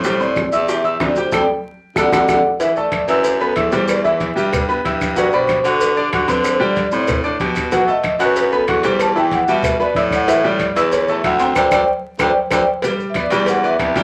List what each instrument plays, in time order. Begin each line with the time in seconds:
Already playing: baritone saxophone A2
0.04 grand piano G3 G4 G5, vibraphone C5, high bongo, high conga, maracas
0.20 grand piano C4 C5 C6, vibraphone D5, high conga, maracas
0.36 high bongo, high conga, claves, maracas
0.52 baritone saxophone E2, grand piano E4 E5 E6, high conga, maracas
0.68 grand piano G4 G5 G6, vibraphone E5, high bongo, high conga, maracas
0.84 grand piano E4 E5 E6, high conga, maracas
1.00 baritone saxophone D2, grand piano C4 C5 C6, vibraphone D5, high bongo, low bongo, high conga, claves, maracas
1.16 grand piano G4 G5 G6, vibraphone C5, maracas
1.32 baritone saxophone D2, grand piano A4 D5 G5, vibraphone A4 D5 G5, high bongo, high conga, claves, maracas
1.96 baritone saxophone D2, vibraphone A4 D5 F#5, grand piano A4 D5 F#5, high bongo, high conga, claves, maracas
2.12 baritone saxophone D2, vibraphone A4 D5 F#5, grand piano A4 D5 F#5, high bongo, high conga, claves, maracas
2.28 baritone saxophone D2, grand piano A4 D5 F#5, vibraphone A4 D5 F#5, high bongo, high conga, claves, maracas
2.60 grand piano E3 E4 E5, vibraphone E5, cowbell, high conga, maracas
2.76 grand piano A3 A4 A5, vibraphone D5, high conga, maracas
2.92 cowbell, high conga, claves, maracas
3.08 baritone saxophone F#2, grand piano E4 E5 E6, vibraphone B4, cowbell, high conga, maracas
3.24 cowbell, high conga, maracas
3.40 grand piano B3 B4 B5, vibraphone A4, high conga, maracas
3.56 baritone saxophone E2, grand piano E4 E5 E6, cowbell, high conga, claves, maracas
3.70 grand piano G3 G4 G5, vibraphone C5, cowbell, maracas
3.88 vibraphone D5, cowbell, high conga, claves, maracas
4.03 grand piano E3 E4 E5, vibraphone E5, high conga, maracas
4.20 cowbell, high conga, maracas
4.36 baritone saxophone G2, grand piano G3 G4 G5, maracas
4.53 cowbell, high conga, low conga, claves, maracas
4.69 grand piano B3 B4 B5, high conga, maracas
4.84 baritone saxophone G2, grand piano E4 E5 E6, cowbell, high conga, maracas
5.01 cowbell, high conga, claves, maracas
5.16 grand piano F#3 F#4 F#5, vibraphone D5, cowbell, high conga, maracas
5.32 grand piano B2 D5 B5, vibraphone C5, high conga, maracas
5.49 cowbell, high conga, claves, maracas
5.64 baritone saxophone D3, grand piano F#4 F#5 F#6, vibraphone A4, cowbell, high conga, maracas
5.81 cowbell, high conga, maracas
5.96 grand piano D4 D5 D6, vibraphone G4, high conga, maracas
6.12 baritone saxophone D3, grand piano F#4 F#5 F#6, cowbell, high conga, claves, maracas
6.28 grand piano C4 C5 C6, vibraphone B4, cowbell, high conga, maracas
6.44 vibraphone C5, cowbell, claves, maracas
6.60 grand piano G3 G4 G5, vibraphone D5, high conga, maracas
6.76 cowbell, high conga, maracas
6.91 baritone saxophone A2, grand piano C4 C5 C6, maracas
7.07 cowbell, high conga, low conga, claves, maracas
7.24 baritone saxophone A2, grand piano D4 D5 D6, high conga, maracas
7.39 baritone saxophone B2, grand piano G4 G5 G6, cowbell, high conga, maracas
7.55 cowbell, high conga, claves, maracas
7.72 grand piano F#3 F#4 F#5, vibraphone F#5, cowbell, high conga, maracas
7.87 grand piano A3 A4 A5, vibraphone D#5, high conga, maracas
8.03 cowbell, high conga, claves, maracas
8.19 baritone saxophone F#2, grand piano F#4 F#5 F#6, cowbell, high conga, maracas
8.24 vibraphone B4
8.36 cowbell, high conga, maracas
8.52 grand piano B3 B4 B5, vibraphone A4, high conga, maracas
8.67 baritone saxophone E2, grand piano F#4 F#5 F#6, cowbell, high conga, claves, maracas
8.83 grand piano G3 G4 G5, vibraphone C5, cowbell, maracas
8.99 vibraphone A5, cowbell, high conga, claves, maracas
9.15 grand piano E3 E4 E5, vibraphone G5, high conga, maracas
9.31 vibraphone F#5, cowbell, high conga, maracas
9.48 baritone saxophone B2, grand piano G3 G4 G5, vibraphone E5, maracas
9.63 cowbell, high conga, low conga, claves, maracas
9.79 baritone saxophone B2, grand piano B3 B4 B5, vibraphone D5, high conga, maracas
9.95 baritone saxophone A2, grand piano E4 E5 E6, cowbell, high conga, maracas
10.11 cowbell, high conga, claves, maracas
10.15 vibraphone F#5
10.27 grand piano E3 E4 E5, vibraphone E5, cowbell, high conga, maracas
10.43 grand piano G3 G4 G5, vibraphone D5, high conga, maracas
10.59 cowbell, high conga, claves, maracas
10.76 baritone saxophone E2, grand piano E4 E5 E6, vibraphone B4, cowbell, high conga, maracas
10.92 vibraphone C#5, cowbell, high conga, maracas
11.08 grand piano A3 A4 A5, vibraphone E5, high conga, maracas
11.24 baritone saxophone D2, grand piano E4 E5 E6, vibraphone F#5, cowbell, high conga, claves, maracas
11.40 grand piano C4 C5 C6, vibraphone G5, cowbell, maracas
11.55 baritone saxophone D2, grand piano A4 C5 D5, vibraphone C5 D5 G5, cowbell, high conga, claves, maracas
11.71 baritone saxophone D2, grand piano A4 C5 D5, vibraphone C5 D5 G5, cowbell, high conga, claves, maracas
12.19 baritone saxophone D2, grand piano A4 C5 D5, vibraphone C5 D5 G5, cowbell, high conga, claves, maracas
12.51 baritone saxophone D2, grand piano A4 C5 D5, vibraphone C5 D5 G5, cowbell, high conga, claves, maracas
12.82 grand piano G3 G4 G5, cowbell, high conga, maracas
12.99 high conga, maracas
13.10 vibraphone E5
13.14 grand piano B3 B4 D5, cowbell, high conga, claves, maracas
13.19 vibraphone D5
13.30 baritone saxophone E2, grand piano G3 G4 G5, cowbell, maracas
13.46 vibraphone F#5, cowbell, high conga, maracas
13.64 grand piano B3 B4 D5, vibraphone E5, high conga, maracas
13.79 baritone saxophone C2, cowbell, high conga, claves, maracas
13.96 grand piano G3 G4 G5, vibraphone D5, cowbell, high conga, maracas